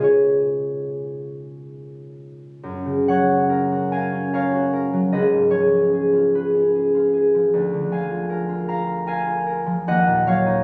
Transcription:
Already playing: C#3 G#3 F4 G#5
0.00 G#4 C#5
2.63 F#2
2.85 C#3
3.08 F#3 C#5 F#5
3.29 C#4
3.50 A#4
3.72 F#4
3.92 A#4 F5 G#5
4.12 C#4
4.33 A#4 C#5 F5
4.53 F#4
4.73 A#4
4.93 F#3
5.12 C#2 B4 D#5
5.33 G#2
5.50 F3 G#4 C#5
5.73 C#4
5.93 G#4
6.13 F4
6.35 G#4 B4
6.54 C#4
6.75 G#4
6.95 F4
7.13 G#4
7.35 F3
7.54 D2
7.73 D3
7.91 F3 F5 G#5
8.10 F4
8.29 A#4
8.49 F4
8.68 A#4 F5 A#5
8.87 F4
9.06 A#4 F5 G#5
9.26 F4
9.46 A#4
9.66 F3
9.88 D#2 D#5 F#5
10.07 A#2
10.27 F#3 C#5 F5
10.46 D#4

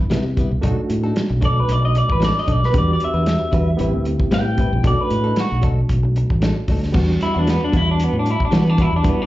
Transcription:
Already playing: G3 B3 D4 E4
0.10 C3 G3 B3 E4, snare, closed hi-hat
0.26 muted clean electric guitar stroke
0.37 G3 B3 E4, kick, closed hi-hat
0.51 C2, muted clean electric guitar stroke
0.61 B1 F#3 A3 D4 D#4 F#4 A4, kick, closed hi-hat
0.78 muted fingered electric bass stroke
0.90 A2, muted clean electric guitar stroke, closed hi-hat
1.04 D4 D#4 A4
1.16 muted clean electric guitar stroke, snare, closed hi-hat
1.30 B1, muted clean electric guitar stroke
1.41 F#3 D4 D#4 A4 D5, kick, closed hi-hat
1.60 B4
1.68 B1 D5, closed hi-hat
1.82 D#5, muted clean electric guitar stroke
1.95 D5, muted clean electric guitar stroke, closed hi-hat
2.09 A1 B4, muted clean electric guitar stroke, kick
2.20 F#3 D4 D#4 A4, snare, closed hi-hat
2.25 D5
2.35 muted clean electric guitar stroke, snare
2.39 D#5
2.46 B1 F#3 D4 D#4 A4, kick, closed hi-hat
2.52 D5
2.62 B4, muted clean electric guitar stroke, snare
2.72 E2 G3 B3 D4 F#4 G4 B4, kick, closed hi-hat
2.78 D5
2.93 D5
3.00 muted clean electric guitar stroke, closed hi-hat
3.04 E5
3.14 E2 D4 F#4 B4
3.26 muted clean electric guitar stroke, snare, closed hi-hat
3.40 muted clean electric guitar stroke
3.52 E2 G3 D4 F#4 B4, kick, closed hi-hat
3.77 A1 G3 B3 C4 E4 G4 B4, closed hi-hat
3.93 D2, muted clean electric guitar stroke
4.05 muted clean electric guitar stroke, closed hi-hat
4.20 muted clean electric guitar stroke, kick
4.31 A2 G3 C4 E4 B4 G5, snare, closed hi-hat
4.46 muted clean electric guitar stroke
4.57 G3 C4 E4 B4, kick, closed hi-hat
4.73 A#1, muted clean electric guitar stroke
4.83 B1 F#3 A3 D4 D#4 F#4 A4, kick, closed hi-hat
4.87 D5
5.01 B4
5.10 A2, muted clean electric guitar stroke, closed hi-hat
5.24 D4 D#4 A4
5.36 F#4, snare, closed hi-hat
5.51 B1, muted clean electric guitar stroke
5.62 F#3 D4 D#4 A4, kick, closed hi-hat
5.89 B1, kick, closed hi-hat
6.03 muted clean electric guitar stroke
6.16 muted clean electric guitar stroke, closed hi-hat
6.30 A1, muted clean electric guitar stroke, kick
6.42 F#3 D4 D#4 A4, snare, closed hi-hat
6.57 muted clean electric guitar stroke
6.68 D2 F#3 D4 D#4 A4, kick, open hi-hat
6.82 muted clean electric guitar stroke, snare
6.92 E2 G3 B3 D4 F#4, kick, crash
7.21 E4, muted clean electric guitar stroke, snare, closed hi-hat
7.34 E2 B3 D4 F#4
7.39 D4
7.47 B3, muted clean electric guitar stroke, snare, closed hi-hat
7.61 D4, muted clean electric guitar stroke
7.72 E2 G3 B3 D4 F#4, kick, closed hi-hat
7.76 E4
7.91 D4
8.00 closed hi-hat
8.04 B3
8.13 A2, muted clean electric guitar stroke
8.19 D4
8.26 muted clean electric guitar stroke, closed hi-hat
8.30 E4
8.40 muted clean electric guitar stroke, kick
8.45 D4
8.51 E3 G3 B3 D4 F#4, snare, closed hi-hat
8.57 B3
8.69 D4
8.77 G3 B3 D4 F#4, kick, closed hi-hat
8.82 E4
8.91 E2, muted clean electric guitar stroke
8.96 D4
9.03 G3 B3 D4 E4 F#4, kick, closed hi-hat
9.09 B3
9.19 D4, muted fingered electric bass stroke

